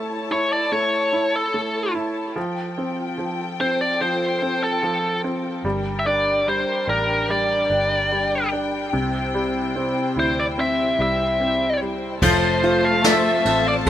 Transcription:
Already playing: A3 E4 C#5 A5
0.31 E4 C#5
0.53 D5
0.72 A3 C#5
1.13 E4
1.36 A4
1.54 A3
1.95 E4
2.35 F3 F4 A4 G5
2.78 C4
3.18 F3
3.60 C4 C5
3.81 D5
4.01 F3 C5
4.42 C4
4.64 A4
4.83 F3
5.24 C4
5.64 G1 G3 D4 A#4 G5
5.99 E5
6.06 D4 D5
6.47 G3 C5
6.88 A1 D4 A#4
7.29 G3 D5
7.70 G1 D4
8.11 G3
8.52 D4
8.93 C2 C3 E4 C5
9.35 G3
9.76 C4
10.16 D2 E4 C5
10.40 D5
10.58 C4 E5
10.99 C2 G3 E5
11.40 C4
11.82 G3
12.21 F1 F3 A3 C4 F4 A4 C5 A5, kick, crash
12.63 F4, ride
12.85 F5
13.04 F3 C4 F4 A4 E5, snare, ride
13.45 A1 F3 C4 F4 A4, ride
13.68 D5
13.86 A4, ride

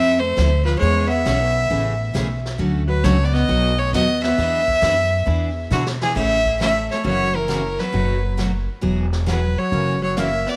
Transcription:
Already playing: F2 F3 C4 E4 A4 E5
0.19 A3 C5
0.36 D2 F3 C4 E4 A4, snare, hi-hat pedal
0.65 F3 B4, snare
0.79 E2 E3 G#3 C#5, brush sweep
0.83 B3 C#4 G#4
1.07 B3 E5
1.25 B1 E3 B3 C#4 G#4, snare, hi-hat pedal
1.70 A1 C#3 E3 A3 C#4 G#4, brush sweep
2.14 B1 C#3 E3 A3 C#4 G#4, snare, hi-hat pedal
2.46 snare
2.58 D2 D3 F#3 A3 C#4 F#4, brush sweep
2.88 F#3 B4
3.04 C#2 D3 F#3 A3 C#4 F#4 C#5, snare, hi-hat pedal
3.23 B3 D5
3.33 B3 D#5, snare
3.48 B1 B2 F#3 A3 D#4 F#4, brush sweep
3.78 A3 C#5
3.93 D#2 B2 F#3 A3 B3 D#4 F#4 D#5, snare, hi-hat pedal
4.23 B3 E5, snare
4.38 E2 E3 B3 D4 G#4, brush sweep, snare
4.68 kick
4.81 F#2 E3 B3 D4 G#4, snare, hi-hat pedal
5.26 E2 E3 B3 D4 G#4, brush sweep
5.71 B2 D3 E3 B3 D4 F#4 G#4, snare, hi-hat pedal
5.86 snare
6.01 E3 G#4, snare
6.15 A1 C#3 E3 A3 C#4 G#4 E5, brush sweep, kick, crash
6.19 A3
6.46 kick
6.60 C#3 E3 A3 C#4 G#4 E5, snare, hi-hat pedal
6.91 A3 C#5, snare
7.04 F#1 C#3 E3 A#3 C#4 F#4 C#5, brush sweep
7.08 F#3
7.35 E3 A#4
7.48 C#3 E3 A#3 C#4 F#4, snare, hi-hat pedal
7.79 F#3 B4, snare
7.92 F#1 B2 F#3 A3 D#4 F#4, brush sweep
8.37 B2 F#3 A3 D#4 F#4, snare, hi-hat pedal
8.81 E1 E3 F#3 B3 F#4 G#4, brush sweep
9.13 snare
9.26 E3 F#3 B3 F#4 G#4 B4, snare, hi-hat pedal
9.58 F#3 C#5
9.72 F#1 C#3 E3 A#3 C#4 F#4, brush sweep
10.02 F#3 C#5
10.16 C#3 E3 A#3 C#4 F#4 E5, snare, hi-hat pedal
10.47 B3 D5, snare

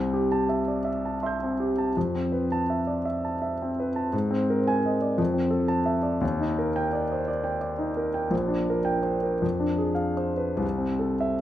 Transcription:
Already playing: C2 C4
0.14 G4
0.32 A5
0.49 E5
0.68 D5
0.85 E5
1.05 A5
1.23 E5 C6 G6
1.43 C4
1.60 G4
1.78 A5
1.97 F2
2.15 C4
2.32 B4
2.52 A5
2.70 E5
2.87 D5
3.05 E5
3.25 A5
3.42 E5
3.62 C4
3.80 B4
3.96 A5
4.13 G#2
4.31 C4
4.50 A#4
4.67 G#5
4.85 D#5
5.02 D5
5.18 F2
5.34 C4
5.51 A4
5.68 A5
5.86 E5
6.03 D5
6.21 D#2
6.40 D#4
6.59 A#4
6.76 G5
6.93 D5
7.12 C5
7.28 D5
7.44 G5
7.61 D5
7.79 D#4
7.97 A#4
8.14 G5
8.30 A#1
8.48 D4
8.70 A#4
8.85 G5
9.03 C5
9.23 A#4
9.42 F2
9.60 D4
9.78 G#4
9.95 F5
10.17 C5
10.37 B4
10.57 C2
10.78 C4
10.99 A4
11.21 E5

